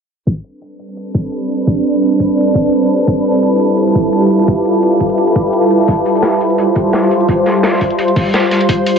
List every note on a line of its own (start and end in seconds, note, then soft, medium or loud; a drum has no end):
0.27 8.65 G3 medium
0.27 3.05 C4 medium
0.27 3.05 D4 medium
0.27 5.84 A4 medium
0.27 5.84 B4 medium
0.27 kick loud
0.44 closed hi-hat medium
0.62 closed hi-hat medium
0.79 closed hi-hat medium
0.89 closed hi-hat soft
0.97 closed hi-hat medium
1.15 kick medium
1.32 closed hi-hat medium
1.50 closed hi-hat medium
1.59 closed hi-hat soft
1.67 kick loud
1.85 closed hi-hat medium
2.02 closed hi-hat medium
2.20 kick medium
2.20 closed hi-hat medium
2.29 closed hi-hat soft
2.38 closed hi-hat medium
2.47 closed hi-hat soft
2.55 kick loud
2.55 closed hi-hat medium
2.73 closed hi-hat medium
2.90 closed hi-hat medium
2.99 closed hi-hat soft
3.08 5.85 E4 medium
3.08 8.65 F4 medium
3.08 kick loud
3.08 closed hi-hat medium
3.25 closed hi-hat medium
3.43 closed hi-hat medium
3.60 closed hi-hat medium
3.70 closed hi-hat soft
3.78 closed hi-hat medium
3.95 kick loud
3.95 closed hi-hat medium
4.13 closed hi-hat medium
4.30 closed hi-hat medium
4.40 closed hi-hat soft
4.48 kick loud
4.48 closed hi-hat medium
4.65 closed hi-hat medium
4.83 closed hi-hat medium
5.00 kick medium
5.00 closed hi-hat medium
5.10 closed hi-hat soft
5.18 closed hi-hat medium
5.27 closed hi-hat soft
5.36 kick loud
5.36 closed hi-hat medium
5.53 closed hi-hat medium
5.71 closed hi-hat medium
5.80 closed hi-hat soft
5.88 8.99 C5 medium
5.88 kick loud
5.88 closed hi-hat medium
6.06 closed hi-hat medium
6.15 closed hi-hat soft
6.23 snare loud
6.23 closed hi-hat medium
6.41 closed hi-hat medium
6.50 closed hi-hat soft
6.58 closed hi-hat medium
6.75 kick loud
6.75 closed hi-hat medium
6.93 snare loud
6.93 closed hi-hat medium
7.11 closed hi-hat medium
7.20 closed hi-hat soft
7.29 kick loud
7.29 closed hi-hat medium
7.46 snare soft
7.46 closed hi-hat medium
7.63 snare loud
7.63 closed hi-hat medium
7.73 snare soft
7.81 kick medium
7.81 closed hi-hat medium
7.90 closed hi-hat soft
7.99 closed hi-hat medium
8.08 closed hi-hat soft
8.16 kick loud
8.16 closed hi-hat medium
8.16 open hi-hat medium
8.34 snare loud
8.34 closed hi-hat medium
8.51 snare soft
8.51 closed hi-hat medium
8.61 closed hi-hat soft
8.69 8.99 A3 medium
8.69 8.99 D4 medium
8.69 8.99 E4 medium
8.69 8.99 B4 medium
8.69 kick loud
8.69 closed hi-hat medium
8.86 closed hi-hat medium